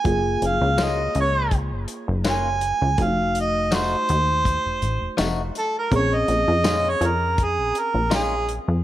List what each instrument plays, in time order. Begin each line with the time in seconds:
Already playing: harmonica G#5
0.04 analog synth bass F#1, reed electric piano A#3 F4 G#4, kick, closed hi-hat
0.42 analog synth bass F#1, closed hi-hat
0.47 harmonica F5
0.61 analog synth bass C#2
0.78 clean electric guitar F#3 A#3 C#4 F4, snare, closed hi-hat, tambourine
0.84 harmonica D#5
1.15 analog synth bass C#2, closed hi-hat
1.21 harmonica C#5
1.51 kick, closed hi-hat
1.72 analog synth bass F#1
1.88 closed hi-hat
2.08 analog synth bass F#1
2.24 clean electric guitar F#3 A#3 C#4 F4, snare, closed hi-hat, tambourine
2.30 harmonica G#5
2.61 closed hi-hat
2.82 analog synth bass C#2
2.98 analog synth bass F1, reed electric piano A3 D#4 F#4, kick, closed hi-hat
3.03 harmonica F5
3.35 closed hi-hat
3.40 harmonica D#5
3.71 clean electric guitar F3 A3 D#4 F#4, harmonica C5, snare, closed hi-hat, tambourine
4.09 analog synth bass D#2, closed hi-hat
4.45 kick, closed hi-hat
4.66 analog synth bass F1
4.82 analog synth bass A1, closed hi-hat
5.01 analog synth bass F1
5.17 analog synth bass F1, clean electric guitar F3 A3 D#4 F#4, snare, closed hi-hat, tambourine
5.55 harmonica A4, closed hi-hat
5.79 harmonica A#4
5.91 analog synth bass A#1, reed electric piano C4 C#4 G#4, kick, closed hi-hat
5.96 harmonica C#5
6.15 harmonica D#5
6.28 analog synth bass A#1, closed hi-hat
6.48 analog synth bass F2
6.64 clean electric guitar A#2 G#3 C#4 F4, snare, closed hi-hat, tambourine
6.89 harmonica C#5
7.01 analog synth bass F2, closed hi-hat
7.06 harmonica A#4
7.38 kick, closed hi-hat
7.43 harmonica G#4
7.58 analog synth bass A#1
7.75 harmonica A#4, closed hi-hat
7.94 analog synth bass A#1
8.10 clean electric guitar A#2 G#3 C#4 F4, snare, closed hi-hat, tambourine
8.15 harmonica G#4
8.49 closed hi-hat
8.68 analog synth bass F2